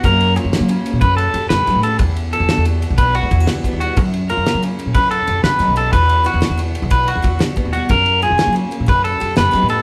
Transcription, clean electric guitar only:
\new Staff \with { instrumentName = "Clean electric guitar" } { \time 12/8 \key e \minor \tempo 4. = 122 ais'4 r2 b'8 a'4 b'4 a'8 | r4 a'4 r4 b'8 fis'4 r4 fis'8 | r4 ais'4 r4 b'8 a'4 b'4 a'8 | b'4 fis'4 r4 b'8 fis'4 r4 fis'8 |
ais'4 gis'4 r4 b'8 a'4 b'4 a'8 | }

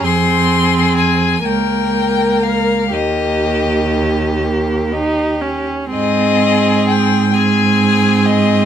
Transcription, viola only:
\new Staff \with { instrumentName = "Viola" } { \time 6/8 \key aes \major \tempo 4. = 42 c'4. bes4. | bes4. bes8 ees'8 des'8 | c'4. c'4. | }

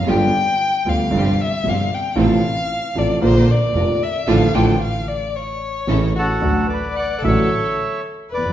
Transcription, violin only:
\new Staff \with { instrumentName = "Violin" } { \time 4/4 \key a \phrygian \tempo 4 = 113 g''4. f''4 e''8 f''8 g''8 | f''4. d''8 c''8 d''4 e''8 | f''8 g''8 f''8 d''8 cis''4. fis'8~ | \key d \major fis'8 b'8 d''8 a'4. r8 b'8 | }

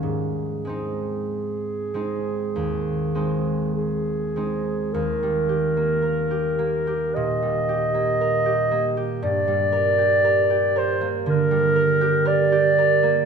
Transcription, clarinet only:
\new Staff \with { instrumentName = "Clarinet" } { \time 4/4 \key aes \major \tempo 4 = 56 aes'2. aes'4 | \key ees \major bes'2 ees''2 | d''4. c''8 bes'4 d''4 | }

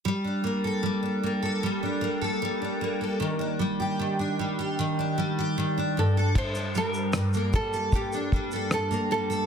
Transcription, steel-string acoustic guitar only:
\new Staff \with { instrumentName = "Steel-string acoustic guitar" } { \time 4/4 \key g \minor \tempo 4 = 76 g16 d'16 bes16 a'16 g16 d'16 bes16 a'16 g16 d'16 bes16 a'16 g16 d'16 bes16 a'16 | ees16 d'16 g16 g'16 ees16 d'16 g16 g'16 ees16 d'16 g16 g'16 ees16 d'16 g,16 a'16 | r16 d'16 g8 g,16 bes16 g16 a'16 g,16 d'16 g16 a'16 g,16 bes16 g16 a'16 | }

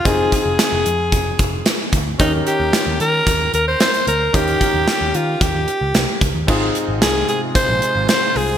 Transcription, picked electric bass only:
\new Staff \with { instrumentName = "Picked electric bass" } { \clef bass \time 4/4 \key ees \mixolydian \tempo 4 = 112 f,,8 r16 f,,16 r16 f,,16 f,8 f,,8 f,,8 r8 d,8 | ees,8 r16 ees,16 r16 ees,16 ees8 ees,8 ees,8 r8 d,8 | ees,8 r16 ees,16 r16 ees,16 ees8 ees,16 ees,16 r16 des,16 c,16 r16 des,16 ees,16 | aes,,8 r16 aes,,16 c,8 r8. bes,,16 r16 aes,,16 r8 c,8 | }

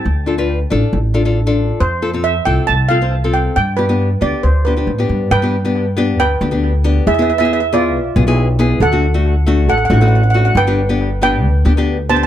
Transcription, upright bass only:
\new Staff \with { instrumentName = "Upright bass" } { \clef bass \time 4/4 \key g \mixolydian \tempo 4 = 137 d,4. a,,16 r16 a,,2 | f,4. c,16 r16 c,2 | g,4. d,16 r16 d,4 a,8 g,8 | g,2 d,8 d,4. |
e,2 b,,8 b,,4. | d,2 a,,8 a,,4. | g,,2 d,8 d,4. | }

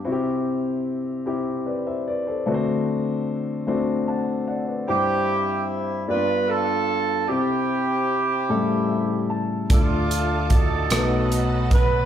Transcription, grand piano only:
<<
  \new Staff \with { instrumentName = "Grand piano" } { \time 6/8 \key c \major \tempo 4. = 50 << { r2 <b' d''>16 <c'' e''>16 <b' d''>16 <a' c''>16~ | <a' c''>16 r4. r16 <fis'' a''>8 <d'' fis''>16 <b' d''>16~ | <b' d''>16 r2 r8. | r2 e''8 a''8 |
r2. | } \\ { <c' e' fis' g'>4 r8 <c' e' g'>4 r8 | <a c' d' fis' b' c''>4 r8 <a c' d' fis' c''>4 r8 | <e' g' c''>4 r8 <bes b d' f' g' d''>4 r8 | <c' e' g'>4 r8 <cis g a e' a'>4 r8 |
<d' f' a'>4 r8 <a b dis' fis' a' b'>4 r8 | } >> }
  \new Staff \with { instrumentName = "Grand piano" } { \clef bass \time 6/8 \key c \major c4. r4. | d4. r4. | g,4. g,4. | c4. a,4. |
r4. b,4. | }
>>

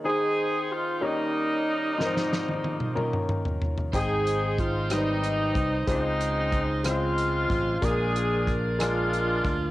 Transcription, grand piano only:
\new Staff \with { instrumentName = "Grand piano" } { \time 6/8 \key aes \major \tempo 4. = 62 <ees ees' aes' c''>4. <ees bes des' ees' g' des''>4. | <aes, f c' ees' f' bes' c''>4. <ees bes des' ees' f' bes'>4. | <aes, aes c' ees' c'' g''>4. <g c' ees' g' ces'' c''>4. | <des aes c' f' c''>4. <des aes c' f' c''>4. |
<bes, aes bes d' f' bes'>4. <aes bes d' f' aes'>4. | }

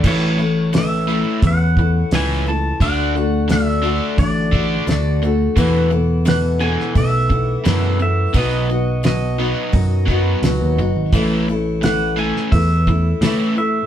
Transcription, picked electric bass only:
\new Staff \with { instrumentName = "Picked electric bass" } { \clef bass \time 4/4 \key a \major \tempo 4 = 87 a,,2 e,4 cis,4 | d,2 a,,4 d,4 | e,2 b,,4 fis,4 | b,,2 fis,4 cis,16 dis,16 fis,,16 gis,,16 |
a,,2 e,4 a,4 | }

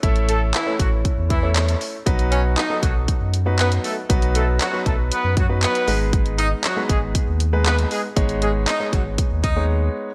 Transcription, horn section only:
\new Staff \with { instrumentName = "Horn section" } { \time 4/4 \key gis \phrygian \tempo 4 = 118 r8 <a a'>16 r16 <e e'>8 <fis fis'>16 r8. <e e'>8 r4 | r8 <cis' cis''>16 r16 <dis' dis''>8 <fis fis'>16 r4 r16 <b b'>16 r16 <a a'>16 r16 | r8 <a a'>16 r16 <fis fis'>8 <a a'>16 r16 <b b'>8 <fis fis'>16 r16 <b b'>8. r16 | r8 <dis' dis''>16 r16 <fis fis'>8 <gis gis'>16 r4 r16 <b b'>16 r16 <gis gis'>16 r16 |
r8 <gis gis'>16 r16 <dis' dis''>8 <fis fis'>16 r8. <dis' dis''>8 r4 | }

